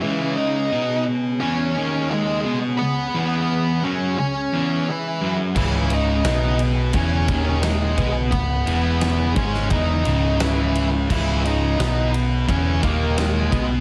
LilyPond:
<<
  \new Staff \with { instrumentName = "Lead electric guitar" } { \time 4/4 \key cis \minor \tempo 4 = 87 <e e'>8 <dis' dis''>4 r8 <cis' cis''>4 <gis gis'>8. r16 | <b b'>4. <cis' cis''>8 <cis' cis''>4 <e e'>8. r16 | <e e'>8 <dis' dis''>4 r8 <cis' cis''>4 <gis gis'>8. r16 | <b b'>4. <cis' cis''>8 <dis' dis''>4 <e e'>8. r16 |
<e e'>8 <dis' dis''>4 r8 <cis' cis''>8 <ais ais'>8 <gis gis'>8. r16 | }
  \new Staff \with { instrumentName = "String section" } { \clef bass \time 4/4 \key cis \minor << { <cis gis gis'>1~ | <cis gis gis'>1~ | <cis gis gis'>1~ | <cis gis gis'>1~ |
<cis gis gis'>1 | } \\ { cis'1~ | cis'1 | b,1~ | b,1~ |
b,1 | } >> }
  \new Staff \with { instrumentName = "Distorted electric guitar" } { \clef bass \time 4/4 \key cis \minor <cis, cis>4 <b, b>4 <e, e>8 <dis, dis>4 <b, b>8 | cis,8 <e, e>4 <fis, fis>8 cis,8 <e, e>8 r8 <fis, fis>8 | <cis, cis>4 <b, b>4 <e, e>8 <dis, dis>4 <b, b>8 | cis,8 <e, e>4 <gis, gis>8 <e, e>8 <cis, cis>4. |
<cis, cis>4 <b, b>4 <e, e>8 <dis, dis>4 <b, b>8 | }
  \new Staff \with { instrumentName = "Distorted electric guitar" } { \clef bass \time 4/4 \key cis \minor r1 | r1 | <cis, cis>4 <b, b>4 <e, e>8 <dis, dis>4 <b, b>8 | cis,8 <e, e>4 <gis, gis>8 <e, e>8 <cis, cis>4. |
<cis, cis>4 <b, b>4 <e, e>8 <dis, dis>4 <b, b>8 | }
  \new Staff \with { instrumentName = "Picked electric bass" } { \clef bass \time 4/4 \key cis \minor r1 | r1 | cis,,4 b,,4 e,,8 dis,,4 b,,8 | cis,,8 e,,4 gis,,8 e,,8 cis,,4. |
cis,,4 b,,4 e,,8 dis,,4 b,,8 | }
  \new DrumStaff \with { instrumentName = "Drums" } \drummode { \time 4/4 r4 r4 r4 r4 | r4 r4 r4 r4 | <cymc bd>8 cymr8 <cymr sn>8 cymr8 <bd cymr>8 <bd cymr>8 <cymr sn>8 <bd cymr>8 | <bd cymr>8 cymr8 <cymr sn>8 <bd cymr>16 sn16 <bd cymr>8 cymr8 <cymr sn>8 cymr8 |
<cymc bd>8 cymr8 <cymr sn>8 cymr8 <bd cymr>8 <bd cymr>8 <cymr sn>8 <bd cymr>8 | }
>>